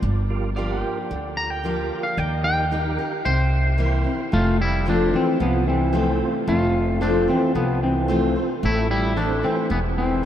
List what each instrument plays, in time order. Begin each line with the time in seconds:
Already playing: clean electric guitar D5
0.02 upright bass G1, steel-string acoustic guitar G2
0.30 tonewheel organ F4 G4 A#4
0.56 steel-string acoustic guitar F3 A#3 D4 G4, tonewheel organ F4 G4 A#4, pedal steel guitar D5 F5
0.82 pedal steel guitar G5
1.11 upright bass D2, steel-string acoustic guitar D3
1.37 clean electric guitar A#5
1.50 clean electric guitar G5
1.64 steel-string acoustic guitar F3 A#3 D4 G4, tonewheel organ F4 G4 A#4
2.03 clean electric guitar F5
2.17 upright bass D#2, steel-string acoustic guitar D#3, pedal steel guitar D5 G5, clean electric guitar G5
2.38 pedal steel guitar D#5
2.44 tonewheel organ D#4 G4 A#4, clean electric guitar G5
2.71 steel-string acoustic guitar G3 A#3 D#4 G4, tonewheel organ D#4 G4 A#4
2.99 steel-string acoustic guitar D#4 G4
3.25 upright bass C2, steel-string acoustic guitar C3, clean electric guitar C5, pedal steel guitar E5 G5
3.78 steel-string acoustic guitar E3 A#3 C4 E4, tonewheel organ E4 A#4 C5
4.04 steel-string acoustic guitar C4 E4
4.32 upright bass F1, steel-string acoustic guitar F2, clean electric guitar A3 F4
4.61 clean electric guitar G3 E4
4.85 steel-string acoustic guitar F3 A3 C4 F4, clean electric guitar F3 D4, tonewheel organ C4 F4 A4 C5
5.13 clean electric guitar E3 C4, steel-string acoustic guitar C4 F4
5.40 upright bass C2, steel-string acoustic guitar C3, clean electric guitar F3 B3
5.67 clean electric guitar E3 C4
5.93 steel-string acoustic guitar F3 A3 C4 F4, tonewheel organ C4 F4 A4 C5
6.47 upright bass F1, steel-string acoustic guitar F2, clean electric guitar A3 F4
7.00 steel-string acoustic guitar F3 A3 C4 F4, clean electric guitar F3 D4, tonewheel organ C4 F4 A4 C5
7.28 clean electric guitar E3 C4, steel-string acoustic guitar C4 F4
7.55 upright bass C2, steel-string acoustic guitar C3, clean electric guitar F3 B3
7.83 clean electric guitar E3 C4
8.08 steel-string acoustic guitar F3 A3 C4 F4, tonewheel organ C4 F4 A4 C5
8.36 steel-string acoustic guitar C4 F4
8.63 upright bass A1, steel-string acoustic guitar A2, clean electric guitar A3 E4
8.91 clean electric guitar G3 E4
9.16 steel-string acoustic guitar E3 A3 C4 E4, clean electric guitar A3 D4, tonewheel organ C4 E4 A4 C5
9.43 clean electric guitar E3 C4, steel-string acoustic guitar C4 E4
9.70 upright bass E1, steel-string acoustic guitar E2, clean electric guitar E3 B3
9.98 clean electric guitar E3 C4